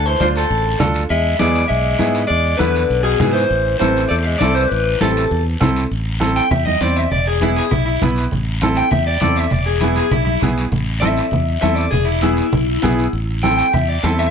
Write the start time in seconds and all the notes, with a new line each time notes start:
Already playing: D2
0.06 E3 C5
0.20 D2 F3 D4 F4 C5, high conga, short guiro
0.36 D3 A4, short guiro
0.50 A1, high conga, long guiro
0.79 D2 D4 F4 A4, high conga, low conga, short guiro
0.94 short guiro
1.10 E2 G#3 E5, high conga, long guiro
1.39 E2 G#3 B3 E4 G#4 D5, high conga, short guiro
1.55 short guiro
1.68 B1 G#3 E5, high conga, long guiro
1.99 G#2 B3 E4 G#4, high conga, short guiro
2.15 short guiro
2.27 E2 G#3 D5, high conga, long guiro
2.57 E2 D3 B3 E4 B4, high conga, short guiro
2.76 short guiro
2.90 B1, high conga, long guiro
3.03 B2 G#4
3.19 G#2 B3 E4 G#4, high conga, low conga, short guiro
3.33 E3 C5, short guiro
3.51 A1, high conga, long guiro
3.78 A1 E3 C4 E4 A4 C5, high conga, short guiro
3.96 short guiro
4.09 E2 A3 D5, high conga, long guiro
4.23 G#3 E5
4.38 C2 A3 C4 E4 A4 D5, high conga, short guiro
4.55 E3 C5, short guiro
4.68 A1 E3 B4, high conga, long guiro
5.01 A1 C3 C4 E4 A4, high conga, short guiro
5.17 short guiro
5.31 E2, high conga, long guiro
5.61 C2 C4 E4 A4, high conga, low conga, short guiro
5.77 short guiro
5.91 A1, long guiro
6.20 C4 E4 A4, high conga, short guiro
6.36 G5, short guiro
6.51 E2 E5, low conga, long guiro
6.66 D#5, high conga
6.81 E2 C4 E4 C5 D5, high conga, short guiro
6.96 E5, short guiro
7.11 E1 D5, low conga, long guiro
7.27 G#4
7.41 B3 E4 G#4, high conga, short guiro
7.56 G#4, short guiro
7.71 B1 E4, low conga, long guiro
7.86 E4
8.02 B1 B3 E4 B4, high conga, low conga, short guiro
8.16 short guiro
8.31 A1, low conga, long guiro
8.61 C4 E4 A4, high conga, short guiro
8.75 G5, short guiro
8.91 E2 E5, low conga, long guiro
9.07 D5
9.21 E2 C4 E4 A4 D5, high conga, low conga, short guiro
9.36 E5, short guiro
9.50 E1 D5, low conga, long guiro
9.66 G#4
9.81 B3 E4 G#4, high conga, short guiro
9.96 G#4, short guiro
10.11 B1 E4, low conga, long guiro
10.25 E4, high conga
10.41 B1 B3 E4 G#4, high conga, low conga, short guiro
10.58 short guiro
10.72 A1, low conga, long guiro
11.00 C4 E4 A4 E5, high conga, short guiro
11.17 short guiro
11.31 E2, low conga, long guiro
11.61 E2 C4 E4 A4 E5, high conga, short guiro
11.75 D5, short guiro
11.91 E1 G#4, low conga, long guiro
12.05 E4
12.22 B3 E4 G#4, high conga, short guiro
12.37 short guiro
12.53 B1, low conga, long guiro
12.82 B1 B3 E4 G#4, high conga, low conga, short guiro
12.99 short guiro
13.13 A1, long guiro
13.43 C4 E4 A4 G5, high conga, short guiro
13.57 G5, short guiro
13.73 E2 E5, low conga, long guiro
13.88 D5
14.03 E2 C4 E4 A4 E5, high conga, short guiro
14.19 E5, short guiro